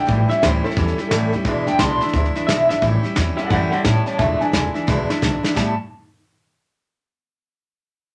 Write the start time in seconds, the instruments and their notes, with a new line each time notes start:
Already playing: clean electric guitar G5
0.06 upright bass A1, steel-string acoustic guitar A2 E3 G3 C#4 E4, kick, snare
0.28 steel-string acoustic guitar G3 C#4 E4, clean electric guitar E5, snare
0.42 upright bass D2, steel-string acoustic guitar A2 E3 G3 C#4 E4, clean electric guitar C5, snare, hi-hat pedal
0.64 steel-string acoustic guitar G3 C#4 E4, clean electric guitar A4, snare
0.70 snare
0.76 upright bass E2, steel-string acoustic guitar E3 G3 C#4 E4, kick, snare
0.88 snare
0.98 steel-string acoustic guitar G3 C#4 E4, snare
1.11 upright bass G2, steel-string acoustic guitar A2 E3 G3 C#4 E4, snare, hi-hat pedal
1.32 upright bass E2, steel-string acoustic guitar G3 C#4 E4, snare
1.44 upright bass E1, steel-string acoustic guitar E2 B2 E3 G#3 D4 E4, kick, snare
1.67 upright bass E1, steel-string acoustic guitar E3 G#3 D4 E4, clean electric guitar G5, snare
1.79 upright bass B1, steel-string acoustic guitar E2 B2 E3 G#3 D4 E4, clean electric guitar C6, snare, hi-hat pedal
2.01 steel-string acoustic guitar E3 G#3 D4 E4, muted upright bass stroke, snare
2.08 snare
2.13 upright bass D2, steel-string acoustic guitar E3 G#3 D4 E4, kick, snare
2.25 snare
2.35 steel-string acoustic guitar E3 G#3 D4 E4, snare
2.47 upright bass B1, steel-string acoustic guitar E2 B2 E3 G#3 D4 E4, clean electric guitar E5, snare, hi-hat pedal
2.69 upright bass G#1, steel-string acoustic guitar E3 G#3 D4 E4, clean electric guitar E5, snare
2.81 upright bass A1, steel-string acoustic guitar A2 E3 G3 C#4 E4, kick, snare
3.03 steel-string acoustic guitar G3 C#4 E4, snare
3.15 upright bass E2, steel-string acoustic guitar E3 G3 C#4 E4, kick, snare, hi-hat pedal
3.37 steel-string acoustic guitar G3 C#4 E4, clean electric guitar A4 F#5, snare
3.50 upright bass F#2, steel-string acoustic guitar A2 E3 G3 C#4 E4, clean electric guitar A4 F#5, kick, snare
3.70 steel-string acoustic guitar G3 C#4 E4, clean electric guitar A4 F#5, snare
3.84 upright bass A2, steel-string acoustic guitar E3 G3 C#4 E4, clean electric guitar C#5 A5, kick, snare, hi-hat pedal
4.06 steel-string acoustic guitar G3 C#4 E4, clean electric guitar C#5 A5, snare
4.18 upright bass E1, steel-string acoustic guitar E2 B2 E3 G#3 D4 E4, clean electric guitar E5 A5, kick, snare
4.41 steel-string acoustic guitar E3 G#3 D4 E4, clean electric guitar G#5, snare
4.52 upright bass E1, steel-string acoustic guitar E3 G#3 D4 E4, kick, snare, hi-hat pedal
4.74 steel-string acoustic guitar E3 G#3 D4 E4, snare
4.87 upright bass B1, steel-string acoustic guitar E2 B2 E3 G#3 D4 E4, kick, snare
5.10 steel-string acoustic guitar E3 G#3 D4 E4, snare
5.21 upright bass B1, steel-string acoustic guitar E3 G#3 D4 E4, kick, snare, hi-hat pedal
5.43 steel-string acoustic guitar E3 G#3 D4 E4, snare
5.54 upright bass A1, steel-string acoustic guitar A2 G3 B3 C#4 E4, clean electric guitar A5, kick, snare, splash